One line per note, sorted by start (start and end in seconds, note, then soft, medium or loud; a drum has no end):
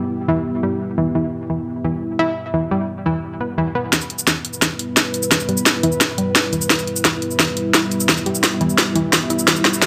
0.00 3.89 G3 medium
0.00 3.89 B3 medium
0.00 3.89 E4 medium
0.00 3.90 G4 medium
0.28 0.42 E3 loud
0.63 0.77 G3 medium
0.98 1.07 E3 medium
1.15 1.24 E3 medium
1.50 1.59 E3 medium
1.85 1.93 E3 medium
2.19 2.28 E4 loud
2.54 2.63 E3 medium
2.71 2.85 G3 medium
3.06 3.19 E3 loud
3.41 3.50 B3 medium
3.58 3.63 E3 loud
3.75 3.84 B3 medium
3.93 4.02 E3 medium
3.93 9.87 G3 medium
3.93 9.87 B3 medium
3.93 9.87 E4 medium
3.93 9.45 B4 medium
3.93 kick medium
3.93 snare soft
3.93 closed hi-hat medium
3.93 cabasa soft
4.01 cabasa soft
4.10 closed hi-hat medium
4.19 cabasa medium
4.27 4.36 E3 medium
4.27 kick medium
4.27 snare soft
4.27 closed hi-hat medium
4.27 cabasa soft
4.45 closed hi-hat medium
4.53 cabasa soft
4.62 4.71 E3 medium
4.62 kick loud
4.62 snare soft
4.62 closed hi-hat medium
4.62 cabasa soft
4.79 closed hi-hat medium
4.97 5.06 E4 medium
4.97 kick loud
4.97 snare medium
4.97 closed hi-hat medium
4.97 cabasa soft
5.14 closed hi-hat medium
5.14 cabasa soft
5.23 cabasa medium
5.31 5.40 E3 medium
5.31 kick loud
5.31 snare medium
5.31 closed hi-hat medium
5.31 cabasa soft
5.40 cabasa soft
5.49 5.62 G3 medium
5.49 closed hi-hat medium
5.57 cabasa medium
5.66 kick loud
5.66 snare medium
5.66 closed hi-hat medium
5.66 cabasa soft
5.83 5.97 E3 loud
5.83 closed hi-hat medium
5.92 cabasa soft
6.01 kick loud
6.01 snare medium
6.01 closed hi-hat medium
6.01 cabasa soft
6.18 6.31 G3 medium
6.18 closed hi-hat medium
6.35 kick loud
6.35 snare medium
6.35 closed hi-hat medium
6.35 cabasa soft
6.53 6.62 E3 medium
6.53 closed hi-hat medium
6.53 cabasa soft
6.61 cabasa medium
6.70 6.79 E3 medium
6.70 kick loud
6.70 snare medium
6.70 closed hi-hat medium
6.70 cabasa soft
6.79 cabasa soft
6.87 closed hi-hat medium
6.96 cabasa medium
7.05 7.14 E3 medium
7.05 kick loud
7.05 snare medium
7.05 closed hi-hat medium
7.05 cabasa soft
7.22 closed hi-hat medium
7.31 cabasa soft
7.39 7.48 E3 medium
7.39 kick medium
7.39 snare medium
7.39 closed hi-hat medium
7.39 cabasa soft
7.57 closed hi-hat medium
7.74 7.83 E4 loud
7.74 kick loud
7.74 snare medium
7.74 closed hi-hat medium
7.74 cabasa soft
7.91 closed hi-hat medium
7.91 cabasa soft
8.00 cabasa medium
8.09 8.18 E3 medium
8.09 kick loud
8.09 snare medium
8.09 closed hi-hat medium
8.09 cabasa soft
8.18 cabasa soft
8.26 8.40 G3 medium
8.26 closed hi-hat medium
8.35 cabasa medium
8.43 kick loud
8.43 snare medium
8.43 closed hi-hat medium
8.43 cabasa soft
8.61 8.74 E3 loud
8.61 closed hi-hat medium
8.70 cabasa soft
8.78 kick loud
8.78 snare medium
8.78 closed hi-hat medium
8.78 cabasa soft
8.95 9.04 E3 loud
8.95 closed hi-hat medium
9.13 9.22 E3 medium
9.13 kick loud
9.13 snare medium
9.13 closed hi-hat medium
9.13 cabasa soft
9.30 9.44 E4 medium
9.30 closed hi-hat medium
9.30 cabasa soft
9.39 cabasa medium
9.47 9.56 E3 medium
9.47 9.87 G4 medium
9.47 kick loud
9.47 snare medium
9.47 closed hi-hat medium
9.47 riser medium
9.47 cabasa soft
9.56 cabasa soft
9.65 snare medium
9.65 closed hi-hat medium
9.73 cabasa medium
9.82 9.87 E3 medium
9.82 kick loud
9.82 snare medium
9.82 closed hi-hat medium
9.82 cabasa soft